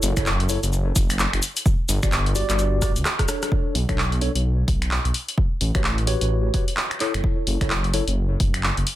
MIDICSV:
0, 0, Header, 1, 4, 480
1, 0, Start_track
1, 0, Tempo, 465116
1, 1709, Time_signature, 4, 2, 24, 8
1, 9243, End_track
2, 0, Start_track
2, 0, Title_t, "Tine electric piano"
2, 0, Program_c, 0, 4
2, 0, Note_on_c, 0, 64, 82
2, 0, Note_on_c, 0, 69, 78
2, 0, Note_on_c, 0, 73, 92
2, 140, Note_off_c, 0, 64, 0
2, 140, Note_off_c, 0, 69, 0
2, 140, Note_off_c, 0, 73, 0
2, 174, Note_on_c, 0, 64, 88
2, 174, Note_on_c, 0, 69, 83
2, 174, Note_on_c, 0, 73, 99
2, 282, Note_off_c, 0, 64, 0
2, 282, Note_off_c, 0, 69, 0
2, 282, Note_off_c, 0, 73, 0
2, 511, Note_on_c, 0, 69, 84
2, 511, Note_on_c, 0, 73, 101
2, 512, Note_on_c, 0, 64, 95
2, 609, Note_off_c, 0, 64, 0
2, 609, Note_off_c, 0, 69, 0
2, 609, Note_off_c, 0, 73, 0
2, 2094, Note_on_c, 0, 66, 88
2, 2094, Note_on_c, 0, 74, 94
2, 2095, Note_on_c, 0, 67, 80
2, 2159, Note_off_c, 0, 66, 0
2, 2159, Note_off_c, 0, 67, 0
2, 2159, Note_off_c, 0, 74, 0
2, 2430, Note_on_c, 0, 66, 97
2, 2430, Note_on_c, 0, 67, 90
2, 2430, Note_on_c, 0, 74, 107
2, 2886, Note_off_c, 0, 67, 0
2, 2887, Note_off_c, 0, 66, 0
2, 2887, Note_off_c, 0, 74, 0
2, 2909, Note_on_c, 0, 66, 86
2, 2909, Note_on_c, 0, 67, 79
2, 2909, Note_on_c, 0, 74, 95
2, 3007, Note_off_c, 0, 66, 0
2, 3007, Note_off_c, 0, 67, 0
2, 3008, Note_off_c, 0, 74, 0
2, 3389, Note_on_c, 0, 62, 82
2, 3389, Note_on_c, 0, 69, 77
2, 3389, Note_on_c, 0, 73, 90
2, 3869, Note_off_c, 0, 62, 0
2, 3869, Note_off_c, 0, 69, 0
2, 3869, Note_off_c, 0, 73, 0
2, 4014, Note_on_c, 0, 62, 88
2, 4014, Note_on_c, 0, 69, 78
2, 4015, Note_on_c, 0, 73, 95
2, 4122, Note_off_c, 0, 62, 0
2, 4122, Note_off_c, 0, 69, 0
2, 4123, Note_off_c, 0, 73, 0
2, 4350, Note_on_c, 0, 62, 88
2, 4350, Note_on_c, 0, 69, 78
2, 4350, Note_on_c, 0, 73, 98
2, 4448, Note_off_c, 0, 62, 0
2, 4448, Note_off_c, 0, 69, 0
2, 4448, Note_off_c, 0, 73, 0
2, 5934, Note_on_c, 0, 66, 84
2, 5934, Note_on_c, 0, 67, 77
2, 5934, Note_on_c, 0, 71, 75
2, 5934, Note_on_c, 0, 73, 90
2, 5999, Note_off_c, 0, 66, 0
2, 5999, Note_off_c, 0, 67, 0
2, 5999, Note_off_c, 0, 71, 0
2, 5999, Note_off_c, 0, 73, 0
2, 6266, Note_on_c, 0, 66, 91
2, 6267, Note_on_c, 0, 67, 82
2, 6267, Note_on_c, 0, 71, 81
2, 6268, Note_on_c, 0, 73, 100
2, 6725, Note_off_c, 0, 66, 0
2, 6725, Note_off_c, 0, 67, 0
2, 6725, Note_off_c, 0, 71, 0
2, 6725, Note_off_c, 0, 73, 0
2, 6750, Note_on_c, 0, 66, 83
2, 6750, Note_on_c, 0, 67, 74
2, 6750, Note_on_c, 0, 71, 75
2, 6750, Note_on_c, 0, 73, 91
2, 6848, Note_off_c, 0, 66, 0
2, 6848, Note_off_c, 0, 67, 0
2, 6848, Note_off_c, 0, 71, 0
2, 6848, Note_off_c, 0, 73, 0
2, 7230, Note_on_c, 0, 64, 80
2, 7230, Note_on_c, 0, 69, 70
2, 7230, Note_on_c, 0, 73, 85
2, 7819, Note_off_c, 0, 64, 0
2, 7819, Note_off_c, 0, 69, 0
2, 7819, Note_off_c, 0, 73, 0
2, 7857, Note_on_c, 0, 64, 87
2, 7857, Note_on_c, 0, 69, 80
2, 7857, Note_on_c, 0, 73, 95
2, 7964, Note_off_c, 0, 64, 0
2, 7964, Note_off_c, 0, 69, 0
2, 7964, Note_off_c, 0, 73, 0
2, 8190, Note_on_c, 0, 64, 89
2, 8190, Note_on_c, 0, 69, 81
2, 8190, Note_on_c, 0, 73, 98
2, 8288, Note_off_c, 0, 64, 0
2, 8288, Note_off_c, 0, 69, 0
2, 8288, Note_off_c, 0, 73, 0
2, 9243, End_track
3, 0, Start_track
3, 0, Title_t, "Detuned saw bass"
3, 0, Program_c, 1, 39
3, 28, Note_on_c, 1, 30, 102
3, 132, Note_off_c, 1, 30, 0
3, 173, Note_on_c, 1, 30, 106
3, 588, Note_off_c, 1, 30, 0
3, 653, Note_on_c, 1, 30, 107
3, 945, Note_off_c, 1, 30, 0
3, 989, Note_on_c, 1, 30, 93
3, 1308, Note_off_c, 1, 30, 0
3, 1375, Note_on_c, 1, 30, 93
3, 1443, Note_off_c, 1, 30, 0
3, 1948, Note_on_c, 1, 31, 104
3, 2052, Note_off_c, 1, 31, 0
3, 2095, Note_on_c, 1, 31, 108
3, 2508, Note_off_c, 1, 31, 0
3, 2574, Note_on_c, 1, 31, 107
3, 3052, Note_on_c, 1, 38, 87
3, 3067, Note_off_c, 1, 31, 0
3, 3121, Note_off_c, 1, 38, 0
3, 3867, Note_on_c, 1, 35, 98
3, 3972, Note_off_c, 1, 35, 0
3, 4013, Note_on_c, 1, 35, 102
3, 4427, Note_off_c, 1, 35, 0
3, 4491, Note_on_c, 1, 35, 99
3, 4784, Note_off_c, 1, 35, 0
3, 4828, Note_on_c, 1, 35, 88
3, 5147, Note_off_c, 1, 35, 0
3, 5211, Note_on_c, 1, 35, 93
3, 5281, Note_off_c, 1, 35, 0
3, 5790, Note_on_c, 1, 33, 96
3, 5893, Note_off_c, 1, 33, 0
3, 5933, Note_on_c, 1, 33, 105
3, 6347, Note_off_c, 1, 33, 0
3, 6413, Note_on_c, 1, 33, 102
3, 6705, Note_off_c, 1, 33, 0
3, 7374, Note_on_c, 1, 30, 89
3, 7442, Note_off_c, 1, 30, 0
3, 7710, Note_on_c, 1, 30, 100
3, 7813, Note_off_c, 1, 30, 0
3, 7854, Note_on_c, 1, 30, 104
3, 8268, Note_off_c, 1, 30, 0
3, 8334, Note_on_c, 1, 30, 106
3, 8626, Note_off_c, 1, 30, 0
3, 8670, Note_on_c, 1, 30, 88
3, 8988, Note_off_c, 1, 30, 0
3, 9054, Note_on_c, 1, 30, 92
3, 9122, Note_off_c, 1, 30, 0
3, 9243, End_track
4, 0, Start_track
4, 0, Title_t, "Drums"
4, 29, Note_on_c, 9, 46, 107
4, 29, Note_on_c, 9, 82, 79
4, 132, Note_off_c, 9, 46, 0
4, 132, Note_off_c, 9, 82, 0
4, 173, Note_on_c, 9, 36, 103
4, 175, Note_on_c, 9, 26, 67
4, 175, Note_on_c, 9, 42, 72
4, 175, Note_on_c, 9, 82, 45
4, 270, Note_off_c, 9, 82, 0
4, 270, Note_on_c, 9, 39, 112
4, 270, Note_on_c, 9, 82, 33
4, 276, Note_off_c, 9, 36, 0
4, 279, Note_off_c, 9, 26, 0
4, 279, Note_off_c, 9, 42, 0
4, 373, Note_off_c, 9, 39, 0
4, 373, Note_off_c, 9, 82, 0
4, 414, Note_on_c, 9, 42, 40
4, 510, Note_on_c, 9, 46, 112
4, 510, Note_on_c, 9, 82, 80
4, 517, Note_off_c, 9, 42, 0
4, 613, Note_off_c, 9, 46, 0
4, 613, Note_off_c, 9, 82, 0
4, 655, Note_on_c, 9, 42, 70
4, 655, Note_on_c, 9, 82, 45
4, 750, Note_off_c, 9, 82, 0
4, 750, Note_on_c, 9, 82, 34
4, 758, Note_off_c, 9, 42, 0
4, 853, Note_off_c, 9, 82, 0
4, 989, Note_on_c, 9, 36, 106
4, 990, Note_on_c, 9, 46, 112
4, 990, Note_on_c, 9, 82, 78
4, 1092, Note_off_c, 9, 36, 0
4, 1094, Note_off_c, 9, 46, 0
4, 1094, Note_off_c, 9, 82, 0
4, 1136, Note_on_c, 9, 26, 56
4, 1136, Note_on_c, 9, 42, 71
4, 1136, Note_on_c, 9, 82, 44
4, 1231, Note_off_c, 9, 82, 0
4, 1231, Note_on_c, 9, 39, 121
4, 1231, Note_on_c, 9, 82, 35
4, 1239, Note_off_c, 9, 26, 0
4, 1239, Note_off_c, 9, 42, 0
4, 1334, Note_off_c, 9, 39, 0
4, 1334, Note_off_c, 9, 82, 0
4, 1377, Note_on_c, 9, 26, 69
4, 1377, Note_on_c, 9, 42, 58
4, 1471, Note_on_c, 9, 46, 105
4, 1471, Note_on_c, 9, 82, 75
4, 1480, Note_off_c, 9, 26, 0
4, 1480, Note_off_c, 9, 42, 0
4, 1574, Note_off_c, 9, 46, 0
4, 1574, Note_off_c, 9, 82, 0
4, 1616, Note_on_c, 9, 42, 76
4, 1616, Note_on_c, 9, 82, 47
4, 1710, Note_on_c, 9, 36, 119
4, 1712, Note_off_c, 9, 82, 0
4, 1712, Note_on_c, 9, 82, 32
4, 1720, Note_off_c, 9, 42, 0
4, 1813, Note_off_c, 9, 36, 0
4, 1815, Note_off_c, 9, 82, 0
4, 1950, Note_on_c, 9, 46, 114
4, 1950, Note_on_c, 9, 82, 75
4, 2053, Note_off_c, 9, 46, 0
4, 2053, Note_off_c, 9, 82, 0
4, 2095, Note_on_c, 9, 36, 104
4, 2096, Note_on_c, 9, 26, 68
4, 2096, Note_on_c, 9, 42, 70
4, 2096, Note_on_c, 9, 82, 43
4, 2190, Note_off_c, 9, 82, 0
4, 2190, Note_on_c, 9, 39, 118
4, 2190, Note_on_c, 9, 82, 33
4, 2198, Note_off_c, 9, 36, 0
4, 2199, Note_off_c, 9, 26, 0
4, 2199, Note_off_c, 9, 42, 0
4, 2293, Note_off_c, 9, 39, 0
4, 2293, Note_off_c, 9, 82, 0
4, 2336, Note_on_c, 9, 42, 39
4, 2432, Note_on_c, 9, 46, 120
4, 2432, Note_on_c, 9, 82, 78
4, 2439, Note_off_c, 9, 42, 0
4, 2535, Note_off_c, 9, 46, 0
4, 2535, Note_off_c, 9, 82, 0
4, 2577, Note_on_c, 9, 39, 62
4, 2577, Note_on_c, 9, 42, 72
4, 2577, Note_on_c, 9, 82, 42
4, 2672, Note_off_c, 9, 42, 0
4, 2672, Note_off_c, 9, 82, 0
4, 2672, Note_on_c, 9, 42, 39
4, 2672, Note_on_c, 9, 82, 32
4, 2681, Note_off_c, 9, 39, 0
4, 2775, Note_off_c, 9, 42, 0
4, 2775, Note_off_c, 9, 82, 0
4, 2910, Note_on_c, 9, 36, 107
4, 2911, Note_on_c, 9, 37, 65
4, 2911, Note_on_c, 9, 46, 119
4, 2911, Note_on_c, 9, 82, 75
4, 3013, Note_off_c, 9, 36, 0
4, 3014, Note_off_c, 9, 37, 0
4, 3014, Note_off_c, 9, 46, 0
4, 3014, Note_off_c, 9, 82, 0
4, 3056, Note_on_c, 9, 42, 70
4, 3056, Note_on_c, 9, 82, 42
4, 3151, Note_off_c, 9, 82, 0
4, 3151, Note_on_c, 9, 37, 82
4, 3151, Note_on_c, 9, 39, 120
4, 3151, Note_on_c, 9, 82, 33
4, 3159, Note_off_c, 9, 42, 0
4, 3254, Note_off_c, 9, 37, 0
4, 3254, Note_off_c, 9, 39, 0
4, 3254, Note_off_c, 9, 82, 0
4, 3294, Note_on_c, 9, 36, 61
4, 3294, Note_on_c, 9, 37, 73
4, 3294, Note_on_c, 9, 42, 57
4, 3390, Note_off_c, 9, 37, 0
4, 3390, Note_on_c, 9, 37, 97
4, 3390, Note_on_c, 9, 46, 112
4, 3390, Note_on_c, 9, 82, 74
4, 3397, Note_off_c, 9, 36, 0
4, 3398, Note_off_c, 9, 42, 0
4, 3493, Note_off_c, 9, 37, 0
4, 3493, Note_off_c, 9, 46, 0
4, 3493, Note_off_c, 9, 82, 0
4, 3536, Note_on_c, 9, 37, 93
4, 3536, Note_on_c, 9, 42, 73
4, 3536, Note_on_c, 9, 82, 44
4, 3629, Note_on_c, 9, 36, 114
4, 3640, Note_off_c, 9, 37, 0
4, 3640, Note_off_c, 9, 42, 0
4, 3640, Note_off_c, 9, 82, 0
4, 3733, Note_off_c, 9, 36, 0
4, 3871, Note_on_c, 9, 46, 106
4, 3974, Note_off_c, 9, 46, 0
4, 4014, Note_on_c, 9, 36, 102
4, 4016, Note_on_c, 9, 26, 52
4, 4016, Note_on_c, 9, 42, 63
4, 4109, Note_on_c, 9, 39, 116
4, 4117, Note_off_c, 9, 36, 0
4, 4119, Note_off_c, 9, 26, 0
4, 4119, Note_off_c, 9, 42, 0
4, 4212, Note_off_c, 9, 39, 0
4, 4254, Note_on_c, 9, 42, 35
4, 4349, Note_on_c, 9, 46, 107
4, 4358, Note_off_c, 9, 42, 0
4, 4452, Note_off_c, 9, 46, 0
4, 4494, Note_on_c, 9, 42, 65
4, 4597, Note_off_c, 9, 42, 0
4, 4828, Note_on_c, 9, 36, 108
4, 4829, Note_on_c, 9, 46, 108
4, 4932, Note_off_c, 9, 36, 0
4, 4933, Note_off_c, 9, 46, 0
4, 4974, Note_on_c, 9, 26, 56
4, 4974, Note_on_c, 9, 42, 61
4, 5069, Note_on_c, 9, 39, 122
4, 5077, Note_off_c, 9, 26, 0
4, 5077, Note_off_c, 9, 42, 0
4, 5172, Note_off_c, 9, 39, 0
4, 5214, Note_on_c, 9, 42, 53
4, 5308, Note_on_c, 9, 46, 104
4, 5317, Note_off_c, 9, 42, 0
4, 5411, Note_off_c, 9, 46, 0
4, 5454, Note_on_c, 9, 42, 69
4, 5548, Note_on_c, 9, 36, 121
4, 5557, Note_off_c, 9, 42, 0
4, 5651, Note_off_c, 9, 36, 0
4, 5788, Note_on_c, 9, 46, 107
4, 5891, Note_off_c, 9, 46, 0
4, 5933, Note_on_c, 9, 26, 54
4, 5933, Note_on_c, 9, 36, 105
4, 5933, Note_on_c, 9, 42, 60
4, 6027, Note_on_c, 9, 39, 122
4, 6036, Note_off_c, 9, 26, 0
4, 6036, Note_off_c, 9, 36, 0
4, 6036, Note_off_c, 9, 42, 0
4, 6130, Note_off_c, 9, 39, 0
4, 6172, Note_on_c, 9, 42, 33
4, 6267, Note_on_c, 9, 46, 107
4, 6275, Note_off_c, 9, 42, 0
4, 6370, Note_off_c, 9, 46, 0
4, 6412, Note_on_c, 9, 42, 63
4, 6515, Note_off_c, 9, 42, 0
4, 6747, Note_on_c, 9, 46, 107
4, 6749, Note_on_c, 9, 36, 109
4, 6850, Note_off_c, 9, 46, 0
4, 6852, Note_off_c, 9, 36, 0
4, 6893, Note_on_c, 9, 42, 62
4, 6986, Note_on_c, 9, 39, 126
4, 6996, Note_off_c, 9, 42, 0
4, 7090, Note_off_c, 9, 39, 0
4, 7132, Note_on_c, 9, 26, 70
4, 7132, Note_on_c, 9, 42, 51
4, 7227, Note_on_c, 9, 39, 61
4, 7227, Note_on_c, 9, 46, 100
4, 7235, Note_off_c, 9, 26, 0
4, 7235, Note_off_c, 9, 42, 0
4, 7330, Note_off_c, 9, 39, 0
4, 7330, Note_off_c, 9, 46, 0
4, 7372, Note_on_c, 9, 26, 72
4, 7372, Note_on_c, 9, 42, 63
4, 7469, Note_on_c, 9, 36, 126
4, 7475, Note_off_c, 9, 26, 0
4, 7475, Note_off_c, 9, 42, 0
4, 7572, Note_off_c, 9, 36, 0
4, 7708, Note_on_c, 9, 46, 102
4, 7812, Note_off_c, 9, 46, 0
4, 7854, Note_on_c, 9, 26, 51
4, 7854, Note_on_c, 9, 36, 109
4, 7854, Note_on_c, 9, 42, 60
4, 7949, Note_on_c, 9, 39, 126
4, 7958, Note_off_c, 9, 26, 0
4, 7958, Note_off_c, 9, 36, 0
4, 7958, Note_off_c, 9, 42, 0
4, 8052, Note_off_c, 9, 39, 0
4, 8094, Note_on_c, 9, 42, 34
4, 8189, Note_on_c, 9, 46, 107
4, 8197, Note_off_c, 9, 42, 0
4, 8293, Note_off_c, 9, 46, 0
4, 8334, Note_on_c, 9, 42, 62
4, 8437, Note_off_c, 9, 42, 0
4, 8669, Note_on_c, 9, 46, 101
4, 8670, Note_on_c, 9, 36, 110
4, 8772, Note_off_c, 9, 46, 0
4, 8773, Note_off_c, 9, 36, 0
4, 8814, Note_on_c, 9, 26, 56
4, 8814, Note_on_c, 9, 42, 61
4, 8909, Note_on_c, 9, 39, 125
4, 8918, Note_off_c, 9, 26, 0
4, 8918, Note_off_c, 9, 42, 0
4, 9013, Note_off_c, 9, 39, 0
4, 9055, Note_on_c, 9, 42, 49
4, 9151, Note_on_c, 9, 46, 95
4, 9158, Note_off_c, 9, 42, 0
4, 9243, Note_off_c, 9, 46, 0
4, 9243, End_track
0, 0, End_of_file